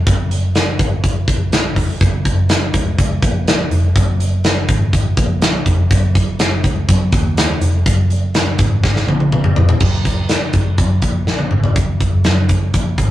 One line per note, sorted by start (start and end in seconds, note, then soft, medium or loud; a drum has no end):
0.07 0.79 F#1 loud
0.07 kick loud
0.07 closed hi-hat medium
0.31 closed hi-hat medium
0.55 snare medium
0.55 closed hi-hat medium
0.79 1.21 G#1 medium
0.79 kick medium
0.79 closed hi-hat medium
1.04 kick medium
1.04 closed hi-hat medium
1.28 1.76 A#1 loud
1.28 kick loud
1.28 closed hi-hat medium
1.52 snare loud
1.52 closed hi-hat medium
1.76 1.97 F1 loud
1.76 kick medium
1.76 open hi-hat medium
2.01 2.70 F#1 loud
2.01 kick loud
2.01 closed hi-hat medium
2.25 kick medium
2.25 closed hi-hat medium
2.49 snare loud
2.49 closed hi-hat medium
2.74 2.95 C#2 medium
2.74 kick medium
2.74 closed hi-hat medium
2.98 3.19 C#2 loud
2.98 kick medium
2.98 closed hi-hat medium
3.22 3.64 A#1 loud
3.22 kick loud
3.22 closed hi-hat medium
3.47 snare loud
3.47 closed hi-hat medium
3.71 3.92 F1 medium
3.71 closed hi-hat medium
3.95 4.65 F#1 loud
3.95 kick loud
3.95 closed hi-hat medium
4.20 closed hi-hat medium
4.44 snare loud
4.44 closed hi-hat medium
4.68 5.10 G#1 medium
4.68 kick loud
4.68 closed hi-hat medium
4.93 kick medium
4.93 closed hi-hat medium
5.17 5.59 A#1 medium
5.17 kick loud
5.17 closed hi-hat medium
5.42 snare loud
5.42 closed hi-hat medium
5.66 5.87 F1 medium
5.66 kick medium
5.66 closed hi-hat medium
5.90 6.60 F#1 loud
5.90 kick loud
5.90 closed hi-hat medium
6.15 kick medium
6.15 closed hi-hat medium
6.39 snare loud
6.39 closed hi-hat medium
6.64 6.85 C#2 medium
6.64 kick medium
6.64 closed hi-hat medium
6.89 7.09 F#2 loud
6.89 kick loud
6.89 closed hi-hat medium
7.12 7.54 D#2 loud
7.12 kick loud
7.12 closed hi-hat medium
7.37 snare loud
7.37 closed hi-hat medium
7.61 7.82 F1 loud
7.61 closed hi-hat medium
7.86 8.55 F#1 loud
7.86 kick loud
7.86 closed hi-hat medium
8.10 closed hi-hat medium
8.34 snare loud
8.34 closed hi-hat medium
8.58 9.00 G#1 medium
8.58 kick medium
8.58 closed hi-hat medium
8.84 kick medium
8.84 snare medium
8.96 snare medium
9.07 9.49 A#1 loud
9.07 high tom medium
9.20 high tom medium
9.32 mid tom medium
9.44 mid tom medium
9.56 9.77 F1 loud
9.56 floor tom medium
9.69 floor tom loud
9.80 10.39 F#1 loud
9.80 kick loud
9.80 crash medium
10.05 kick medium
10.05 closed hi-hat medium
10.29 snare medium
10.29 closed hi-hat medium
10.53 10.80 F#1 medium
10.53 kick medium
10.53 closed hi-hat medium
10.78 10.99 F#2 medium
10.78 kick medium
10.78 closed hi-hat medium
11.02 11.23 A#1 medium
11.02 kick medium
11.02 closed hi-hat medium
11.27 11.48 A#1 medium
11.27 snare medium
11.39 high tom medium
11.51 11.72 G#1 medium
11.51 mid tom medium
11.64 floor tom medium
11.76 12.07 F#1 loud
11.76 kick loud
11.76 closed hi-hat medium
12.00 kick medium
12.00 closed hi-hat medium
12.13 12.23 F#1 medium
12.24 12.46 F#2 medium
12.24 snare medium
12.24 closed hi-hat medium
12.49 12.70 F#1 medium
12.49 kick medium
12.49 closed hi-hat medium
12.74 12.95 A#1 medium
12.74 kick medium
12.74 closed hi-hat medium
12.98 13.11 G#1 medium
12.98 kick medium
12.98 closed hi-hat medium